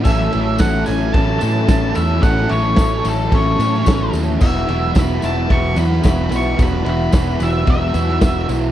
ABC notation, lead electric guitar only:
X:1
M:4/4
L:1/8
Q:1/4=110
K:A
V:1 name="Lead electric guitar"
e2 f g a a2 e | f c2 A c3 z | e2 b a c' b b c' | b b2 e e3 z |]